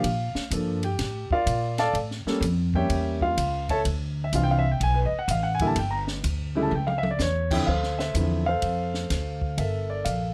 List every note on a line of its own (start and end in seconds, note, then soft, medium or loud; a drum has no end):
0.00 0.33 A#2 medium
0.00 0.48 F5 medium
0.00 ride medium
0.35 muted upright bass stroke soft
0.35 snare medium
0.51 0.97 G2 medium
0.51 0.80 F3 medium
0.51 0.80 A#3 medium
0.51 0.81 D4 medium
0.51 0.81 A4 medium
0.51 hi-hat pedal medium
0.51 ride medium
0.83 1.28 G4 medium
0.83 1.28 G5 medium
0.83 ride soft
0.99 1.28 A2 medium
0.99 snare soft
0.99 ride medium
1.30 1.76 F4 medium
1.30 1.76 A#4 medium
1.30 1.76 D5 medium
1.30 1.76 F5 loud
1.30 muted upright bass stroke soft
1.30 kick medium
1.46 1.93 A#2 medium
1.46 hi-hat pedal medium
1.46 ride medium
1.78 1.95 A4 medium
1.78 1.95 D5 loud
1.78 1.95 F5 medium
1.78 1.94 A5 loud
1.78 snare soft
1.78 ride soft
1.93 2.23 A2 medium
1.93 ride medium
2.11 snare soft
2.26 2.41 G3 medium
2.26 2.41 A#3 medium
2.26 2.41 C#4 medium
2.26 2.42 A4 medium
2.26 muted upright bass stroke soft
2.26 snare soft
2.40 2.88 F2 medium
2.40 hi-hat pedal medium
2.40 ride medium
2.74 3.35 G3 medium
2.74 3.35 A#3 medium
2.74 3.35 C#4 medium
2.74 3.19 G4 medium
2.74 3.19 C#5 medium
2.74 3.19 E5 medium
2.74 3.19 G5 loud
2.74 kick soft
2.89 3.36 E2 medium
2.89 ride medium
3.21 3.67 F4 medium
3.21 3.66 F5 loud
3.21 kick medium
3.37 3.84 C#2 medium
3.37 hi-hat pedal soft
3.37 ride medium
3.69 3.80 A4 medium
3.69 3.80 C#5 medium
3.69 3.80 E5 medium
3.69 3.80 A5 loud
3.69 kick medium
3.69 ride medium
3.85 4.32 D2 medium
3.85 ride medium
4.24 4.32 E5 medium
4.33 4.79 C2 medium
4.33 4.62 E3 medium
4.33 4.62 C4 medium
4.33 4.62 D4 medium
4.33 4.62 F4 medium
4.33 4.45 F5 medium
4.33 hi-hat pedal medium
4.33 ride medium
4.43 4.49 G5 loud
4.51 4.65 F5 medium
4.59 4.69 E5 medium
4.71 4.80 G5 medium
4.80 5.10 B1 medium
4.80 4.97 G#5 loud
4.80 ride medium
4.94 5.11 B4 medium
5.06 5.17 D#5 medium
5.12 muted upright bass stroke soft
5.19 5.27 F#5 medium
5.28 5.74 A1 loud
5.28 5.45 F5 medium
5.28 hi-hat pedal medium
5.28 ride medium
5.43 5.59 F#5 medium
5.55 5.65 G#5 loud
5.59 5.75 D3 medium
5.59 5.75 G3 medium
5.59 5.76 A#3 medium
5.59 5.76 E4 medium
5.59 kick soft
5.59 ride soft
5.67 5.75 A5 loud
5.76 6.22 G1 medium
5.76 5.93 G5 medium
5.76 ride medium
5.91 6.01 A#5 medium
6.07 snare soft
6.24 6.70 D2 loud
6.24 hi-hat pedal soft
6.24 ride medium
6.55 6.70 C#3 medium
6.55 6.70 G3 medium
6.55 6.70 A3 medium
6.55 6.71 E4 medium
6.63 6.71 A5 medium
6.71 7.18 C#2 loud
6.71 mid tom medium
6.75 6.89 G5 medium
6.87 7.03 F5 medium
6.87 mid tom medium
6.98 7.08 E5 loud
7.03 mid tom medium
7.11 7.19 D5 medium
7.19 7.65 E2 loud
7.19 7.58 C#5 medium
7.19 snare medium
7.19 hi-hat pedal medium
7.51 7.66 D3 medium
7.51 7.66 F3 medium
7.51 7.66 C4 medium
7.51 7.66 E4 medium
7.51 7.66 G5 loud
7.51 kick medium
7.51 crash medium
7.66 8.14 D2 medium
7.66 7.99 A4 medium
7.66 7.99 C5 medium
7.66 7.96 F5 medium
7.83 snare soft
7.99 8.47 A4 medium
7.99 8.47 C5 medium
7.99 8.43 E5 medium
7.99 snare soft
8.14 8.61 E2 medium
8.14 8.43 D3 medium
8.14 8.44 F3 medium
8.14 8.44 C4 medium
8.14 8.44 E4 medium
8.14 hi-hat pedal medium
8.14 ride medium
8.46 9.55 A4 medium
8.46 9.55 C5 medium
8.46 9.61 F5 loud
8.62 9.09 F2 medium
8.62 ride medium
8.94 snare soft
9.10 9.57 D2 medium
9.10 snare soft
9.10 hi-hat pedal medium
9.10 ride medium
9.41 kick medium
9.57 10.04 G1 medium
9.57 10.34 A4 medium
9.57 10.34 A#4 medium
9.57 9.91 E5 medium
9.57 ride medium
9.90 10.06 D5 medium
10.05 10.34 A#1 medium
10.05 10.34 F5 medium
10.05 hi-hat pedal medium
10.05 ride medium